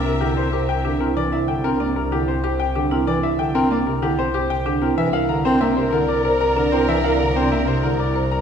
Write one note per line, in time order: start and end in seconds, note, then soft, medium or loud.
0.00 4.87 C2 medium
0.00 0.10 C4 medium
0.00 0.97 A#4 medium
0.00 0.10 D5 medium
0.00 0.97 E5 medium
0.05 0.17 C3 medium
0.05 0.26 A#4 medium
0.05 0.17 A#4 medium
0.21 0.33 D3 medium
0.21 0.42 E4 medium
0.21 0.42 G4 medium
0.21 0.33 A#4 medium
0.37 0.49 C4 medium
0.37 0.48 A#4 medium
0.37 0.58 C5 medium
0.53 0.74 G4 medium
0.53 0.64 A#4 soft
0.53 0.74 C5 medium
0.69 0.80 A#4 soft
0.69 0.90 G5 medium
0.85 0.97 D3 medium
0.85 1.05 D4 medium
0.85 1.06 G4 medium
0.85 0.96 A#4 soft
1.00 1.12 C4 medium
1.00 1.21 E4 medium
1.00 1.21 A#4 medium
1.16 1.28 E3 medium
1.16 1.37 D5 medium
1.32 1.53 E4 medium
1.32 1.53 E5 medium
1.48 1.60 D3 medium
1.48 1.69 G5 medium
1.64 1.76 C4 medium
1.64 1.85 D4 medium
1.64 1.85 A#4 medium
1.80 1.92 A#3 medium
1.80 2.01 C4 medium
1.80 2.01 D5 medium
1.96 2.08 C3 medium
1.96 2.17 A#4 medium
2.12 2.24 D3 medium
2.12 2.33 E4 medium
2.12 2.33 G4 medium
2.28 2.40 C4 medium
2.28 2.48 C5 medium
2.44 2.64 G4 medium
2.44 2.64 C5 medium
2.60 2.80 G5 medium
2.75 2.87 D3 medium
2.75 2.96 D4 medium
2.75 2.96 G4 medium
2.91 3.03 C4 medium
2.91 3.12 E4 medium
2.91 3.12 A#4 medium
3.07 3.19 E3 medium
3.07 3.28 D5 medium
3.23 3.44 E4 medium
3.23 3.44 E5 medium
3.39 3.51 D3 medium
3.39 3.60 G5 medium
3.55 3.67 C4 loud
3.55 3.75 D4 medium
3.55 3.75 A#4 loud
3.71 3.83 A#3 medium
3.71 3.91 C4 medium
3.71 3.91 D5 medium
3.87 3.99 C3 medium
3.87 4.07 A#4 medium
4.02 4.14 D3 medium
4.02 4.23 E4 medium
4.02 4.23 G4 medium
4.18 4.30 C4 medium
4.18 4.39 C5 medium
4.34 4.55 G4 medium
4.34 4.55 C5 medium
4.50 4.71 G5 medium
4.66 4.78 D3 medium
4.66 4.87 D4 medium
4.66 4.87 G4 medium
4.82 4.94 C4 medium
4.82 5.02 E4 medium
4.82 5.02 A#4 medium
4.97 8.41 C2 medium
4.97 5.09 E3 loud
4.97 8.41 A#4 medium
4.97 5.09 A#4 soft
4.97 8.41 D5 medium
4.97 5.18 E5 medium
5.13 5.34 E4 medium
5.13 5.25 A#4 medium
5.13 5.34 F5 medium
5.29 5.41 D3 medium
5.29 5.41 A#4 medium
5.29 5.50 A#5 medium
5.45 5.57 C4 loud
5.45 5.66 D4 medium
5.45 5.57 A#4 medium
5.45 5.66 C5 medium
5.61 5.73 A#3 medium
5.61 5.82 C4 medium
5.61 5.72 A#4 medium
5.61 5.82 E5 medium
5.77 5.89 C3 medium
5.77 5.89 A#4 medium
5.77 5.98 C5 medium
5.93 6.05 D3 medium
5.93 6.13 E4 medium
5.93 6.13 A#4 medium
5.93 6.04 A#4 medium
6.08 6.20 A#4 medium
6.08 6.29 D5 medium
6.25 6.45 A#4 medium
6.25 6.36 A#4 medium
6.25 6.45 C5 medium
6.41 6.52 A#4 medium
6.41 6.61 A#5 medium
6.56 6.68 D3 medium
6.56 6.77 D4 medium
6.56 6.77 A#4 medium
6.56 6.68 A#4 medium
6.72 6.84 C4 medium
6.72 6.93 E4 medium
6.72 6.84 A#4 medium
6.72 6.93 C5 medium
6.88 7.00 E3 medium
6.88 7.00 A#4 medium
6.88 7.09 E5 medium
7.04 7.25 E4 medium
7.04 7.16 A#4 medium
7.04 7.25 F5 medium
7.20 7.32 D3 medium
7.20 7.31 A#4 medium
7.20 7.41 A#5 medium
7.36 7.48 C4 medium
7.36 7.57 D4 medium
7.36 7.47 A#4 medium
7.36 7.57 C5 medium
7.52 7.64 A#3 medium
7.52 7.72 C4 medium
7.52 7.63 A#4 medium
7.52 7.72 E5 medium
7.67 7.80 C3 medium
7.67 7.79 A#4 medium
7.67 7.88 C5 medium
7.83 7.96 D3 medium
7.83 8.04 E4 medium
7.83 8.04 A#4 medium
7.83 7.95 A#4 medium
8.00 8.11 A#4 medium
8.00 8.20 D5 medium
8.15 8.36 A#4 medium
8.15 8.27 A#4 soft
8.15 8.36 C5 medium
8.31 8.41 A#4 soft
8.31 8.41 A#5 medium